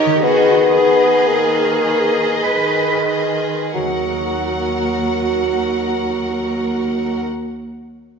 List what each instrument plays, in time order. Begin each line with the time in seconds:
Already playing: viola section D#3, harp C#4 D#4 A#4, bassoon D#4, cello section G4, violin section A#4 C#5 D#5
0.06 harp D#3
0.10 harp B3
0.15 harp D#4
0.19 viola section D#3, bassoon B3, cello section F#4, harp G#4, violin section D#5
0.24 violin section G#4 B4
0.74 cello section G#4, violin section G#4 B4 D#5
1.27 viola section D#3, bassoon A#3
1.84 violin section G#4 B4 D#5
2.44 viola section D#3, bassoon G#3, cello section B4
3.08 violin section G#4 B4 D#5
3.74 cello section D#2, harp D#3, bassoon F#3, viola section F#4, violin section A#4 F#5
3.82 harp A#3
3.89 harp D#4
3.96 harp A#4
4.03 harp D#5